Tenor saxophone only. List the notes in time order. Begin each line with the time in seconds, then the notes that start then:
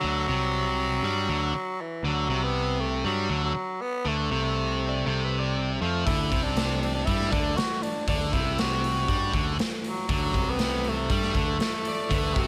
Already playing: F#3
1.81 E3
2.06 F#3
2.43 B3
2.80 A3
3.05 F#3
3.44 F#3
3.82 B3
4.08 A3
5.81 A3
6.06 E4
6.43 D4
6.82 D4
6.94 D4
7.05 E4
7.32 D4
7.56 F#4
7.83 D4
8.08 D4
8.33 E4
8.59 F#4
9.86 F#3
10.12 F#3
10.50 B3
10.88 A3